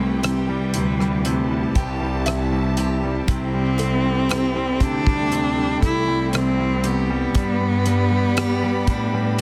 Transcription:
Already playing: C2 C3 G3 A3 E4 G4 B4 G5
0.23 C3 G3 G4, cross-stick, closed hi-hat
0.49 G3
0.74 D2 C3 E4, closed hi-hat
1.00 G3, cross-stick
1.25 C3 G3 A5, closed hi-hat
1.51 G3
1.75 C2 C3 G4 G5, kick, closed hi-hat
2.01 G3
2.26 C3 E4 E5, cross-stick, closed hi-hat
2.52 G3
2.77 C3 G4, closed hi-hat
3.03 G3
3.28 C2 C3 C4 A4 G5, kick, closed hi-hat
3.54 G3
3.78 A3 E4, closed hi-hat
4.05 G3
4.29 C3 G4, cross-stick, closed hi-hat
4.56 G3
4.80 D2 C3 D4 E4, kick, closed hi-hat
5.07 G3, kick, cross-stick
5.32 C3 A3, closed hi-hat
5.57 G3
5.82 C2 A3 E4 G4, kick, closed hi-hat
6.08 G3
6.33 C3 C4 E4, cross-stick, closed hi-hat
6.60 G3
6.84 C3 B3 G4, closed hi-hat
7.10 G3
7.34 G2 G3 G4 B4 D5 B5, kick, closed hi-hat
7.61 G3
7.86 G3 D4, closed hi-hat
8.11 G3
8.37 G3 G4, cross-stick, closed hi-hat
8.63 G3
8.87 A2 G3 D4, kick, closed hi-hat
9.14 G3

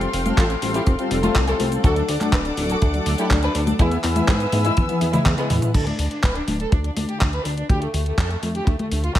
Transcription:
Already playing: A4 F5 G5 C6
0.01 C4, closed hi-hat, cabasa
0.13 F1 C4, open hi-hat
0.25 G3 C4 F4 A4, closed hi-hat, high conga, cabasa
0.37 A1 F4 A4, kick, clap, closed hi-hat, cabasa
0.50 C4, closed hi-hat, cabasa
0.62 A1 G3 C4 F4 A4, open hi-hat
0.74 E4 G4, closed hi-hat, cabasa
0.86 F1 C4, kick, closed hi-hat, cabasa
0.99 G3 C4 F4 A4, closed hi-hat, cabasa
1.11 F1 C4, open hi-hat
1.23 G3 A3 C4 F4 A4, closed hi-hat, high conga, cabasa
1.35 C2 C4, kick, clap, closed hi-hat, cabasa
1.47 G3 C4 F4 A4, closed hi-hat, cabasa
1.60 C2 C4, open hi-hat, high conga
1.72 C4, closed hi-hat, cabasa
1.84 D2 F#3 A3 D4 F#4 A4 D5 F#5 D6, kick, closed hi-hat, cabasa
1.96 D4, closed hi-hat, cabasa
2.08 D2 D4, open hi-hat
2.21 F#3 A3 D4 A4, clap, closed hi-hat, high conga, cabasa
2.32 D1 D4 B4, kick, clap, closed hi-hat, cabasa
2.45 D4, closed hi-hat, cabasa
2.57 D1 F#3 A3 D4 A4, open hi-hat
2.69 F#4 A4, closed hi-hat, cabasa
2.82 D2 D4, kick, closed hi-hat, cabasa
2.94 F#3 A3 D4 A4, closed hi-hat, cabasa
3.06 D2 D4, open hi-hat
3.18 F#3 A3 D4 E4 G4 A4, closed hi-hat, cabasa
3.30 D2 D4, kick, clap, closed hi-hat, cabasa
3.43 F#3 A3 D4 A4 B4, closed hi-hat, cabasa
3.55 D2 D4, open hi-hat
3.67 D4, closed hi-hat, high conga, cabasa
3.79 E2 E3 G#3 B3 E4 G#4 B4 E5 G#5 E6, kick, closed hi-hat, cabasa
3.91 B3, closed hi-hat, cabasa
4.04 E2 B3, clap, open hi-hat
4.16 E3 B3 E4 G#4 E5, closed hi-hat, high conga, cabasa
4.28 G#2 E4 G#4, kick, clap, closed hi-hat, cabasa
4.40 B3, closed hi-hat, cabasa
4.52 G#2 E3 B3 E4 G#4 E5, open hi-hat, high conga
4.65 G#3 E4, closed hi-hat, cabasa
4.77 E2 B3, kick, closed hi-hat, high tom, cabasa
4.89 E3 B3 E4 G#4 E5, closed hi-hat, high tom, cabasa
5.01 E2 B3, open hi-hat
5.13 E3 G#3 B3 E4 G#4 E5, closed hi-hat, mid tom, high conga, cabasa
5.26 E2 B3, kick, clap, closed hi-hat, mid tom, cabasa
5.38 E3 G#3 B3 E4 G#4 E5, closed hi-hat, cabasa
5.50 E2 B3, mid tom, open hi-hat
5.62 B3, closed hi-hat, mid tom, cabasa
5.74 D2 A4, kick, closed hi-hat, crash
5.87 D4, closed hi-hat, high conga
5.99 D2 D4, open hi-hat
6.11 D3 D4 F4 A4 F5, closed hi-hat
6.23 D1 B4, kick, clap, closed hi-hat
6.35 D4, closed hi-hat
6.48 D1 D4, open hi-hat, high conga
6.60 A4, closed hi-hat
6.72 D2 D4, kick, closed hi-hat
6.84 D3 D4 F4 A4 F5, closed hi-hat
6.96 D2 D4, open hi-hat, high conga
7.08 D3 D4 F4 G4 A4 F5, closed hi-hat
7.21 D2 D4, kick, clap, closed hi-hat
7.33 D3 F4 B4, closed hi-hat
7.45 D2 D4, open hi-hat
7.57 D4, closed hi-hat
7.69 D2 D3 D4 F4 G4, kick, closed hi-hat
7.82 A3, closed hi-hat
7.94 D2 A3, open hi-hat
8.06 D3 A3 D4 F4, closed hi-hat
8.18 F2 A4, kick, clap, closed hi-hat
8.30 A3, closed hi-hat
8.43 F2 D3 A3 D4 F4, open hi-hat, high conga
8.55 G4, closed hi-hat
8.67 D2 A3, kick, closed hi-hat
8.79 D3 A3 F4, closed hi-hat, high conga
8.91 D2 A3, open hi-hat
9.04 D3 D4 F4 A4 F5, closed hi-hat
9.15 C2 A3, kick, clap, closed hi-hat

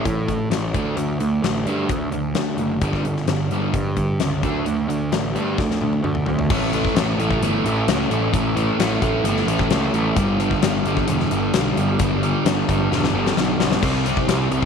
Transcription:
0.05 A2 E3, kick, closed hi-hat
0.28 A2 E3, kick, closed hi-hat
0.50 A1 A2 E3, snare, closed hi-hat
0.74 D2 D3 A3 D4, kick, closed hi-hat
0.97 D2 D3 A3, closed hi-hat
1.19 D2 D3 A3, closed hi-hat
1.42 A1 D3 A3, snare, closed hi-hat
1.65 G2 D3 A3 D4, closed hi-hat
1.89 D2 D3 A3, kick, closed hi-hat
2.11 D2 D3 A3, closed hi-hat
2.35 D2 D3 A3, snare, closed hi-hat
2.58 F#1 D3 A3, closed hi-hat
2.81 G1 G2 D3 G3, kick, closed hi-hat
2.93 kick
3.05 G1 G2 D3, closed hi-hat
3.17 snare
3.28 G1 G2 D3, snare, closed hi-hat
3.51 G1 G2 D3 G3, closed hi-hat
3.74 G2 D3, kick, closed hi-hat
3.97 G2 D3, kick, closed hi-hat
4.20 C#2 G2 D3, snare, closed hi-hat
4.43 D2 D3 A3 D4, kick, closed hi-hat
4.66 D2 D3 A3, closed hi-hat
4.89 D2 D3 A3, closed hi-hat
5.12 A1 D3 A3, snare, closed hi-hat
5.35 G2 D3 A3 D4, closed hi-hat
5.58 D2 D3 A3, kick, snare
5.71 snare
5.81 D2 D3 A3, high tom
5.93 high tom
6.04 D2 D3 A3, mid tom
6.15 mid tom
6.26 D2 D3 A3, floor tom
6.39 floor tom
6.50 A1 A2 E3 A3, kick, crash
6.73 A2 E3 A3, closed hi-hat
6.85 kick
6.95 A1 A2 E3 A3, snare, closed hi-hat
7.18 A1 A2 E3 A3, closed hi-hat
7.31 kick
7.42 G1 A2 E3 A3, closed hi-hat
7.64 A1 A2 E3 A3, closed hi-hat
7.88 C#2 A2 E3 A3, snare, closed hi-hat
8.10 A1 A2 E3 A3, closed hi-hat
8.32 A1 A2 E3 A3, kick, closed hi-hat
8.55 A2 E3 A3, closed hi-hat
8.78 A1 A2 E3 A3, snare, closed hi-hat
9.02 A1 A2 E3 A3, kick, closed hi-hat
9.24 G1 A2 E3 A3, closed hi-hat
9.37 snare
9.47 A1 A2 E3 A3, closed hi-hat
9.59 kick
9.70 C#2 A2 E3 A3, snare, closed hi-hat
9.93 A1 A2 E3 A3, closed hi-hat
10.16 G1 G2 D3 G3, kick, closed hi-hat
10.39 G2 D3 G3, closed hi-hat
10.51 kick
10.62 G1 G2 D3 G3, snare, closed hi-hat
10.85 G1 G2 D3 G3, closed hi-hat
10.97 kick
11.08 E1 G2 D3 G3, closed hi-hat
11.20 snare
11.31 G1 G2 D3 G3, closed hi-hat
11.54 B1 G2 D3 G3, snare, closed hi-hat
11.77 G1 G2 D3 G3, closed hi-hat
11.99 G1 G2 D3 G3, kick, closed hi-hat
12.22 G2 D3 G3, closed hi-hat
12.45 G1 G2 D3 G3, snare, closed hi-hat
12.68 G1 G2 D3 G3, kick, closed hi-hat
12.91 E1 G2 D3 G3, snare
13.04 snare
13.14 G1 G2 D3 G3
13.26 snare
13.36 B1 G2 D3 G3, snare
13.60 B1 G2 D3 G3, snare
13.71 snare
13.82 C2 C3 G3 C4, kick, splash, crash
14.05 C3 G3 C4, closed hi-hat
14.17 kick
14.28 C2 C3 G3 C4, snare, closed hi-hat
14.51 C2 C3 G3 C4, closed hi-hat

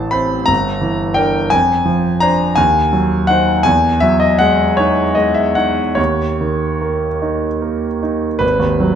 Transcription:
Already playing: A1 E3 A5
0.11 C4 C5 B5
0.46 G1 A#5
0.81 E3
1.14 D4 A#4 G5
1.50 F2 G#5
1.86 F3
2.20 D4 C5 A#5
2.56 D#2 G#5
2.93 F#3
3.27 D#4 C5 F#5
3.63 E2 G#5
4.00 F#3 E5
4.20 D#5
4.39 G#3 F#5
4.77 D#4 C#5
5.15 G#3 D#5
5.34 E5
5.55 D#4 F#5
5.95 D#2 C#5
6.41 D#3
6.81 A#3
7.22 D#4
7.62 A#3
8.03 D#4
8.39 G#1 B4
8.60 D#2
8.80 F#3

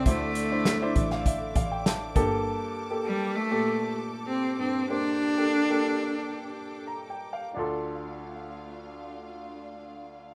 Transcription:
Already playing: D4 E4 G4 A4 D5 E5 D6
0.06 D2 D3 A3 D4 E4 C5, kick, closed hi-hat
0.35 closed hi-hat
0.51 D4 E4 C5
0.65 snare, closed hi-hat
0.82 D4 E4 C5
0.96 A1, kick, closed hi-hat
1.11 F5, snare
1.26 E5, kick, closed hi-hat
1.55 A1 F5, kick, closed hi-hat
1.72 G5
1.86 A5, snare, closed hi-hat
2.15 G1 G2 A#3 G4 A4 A5, kick, closed hi-hat
2.90 A#3 G4 A4
3.05 G3
3.35 A3
3.51 A#2 G4 A4
4.27 C4
4.57 G2 C4 G5
4.90 A#3 D4 G4 C5
5.37 A#3 G4 A4
5.70 A#3 G4 A4
6.87 A#5
7.10 G5
7.33 F5
7.54 D2 A3 D4 F4 D5 F5
7.59 A4

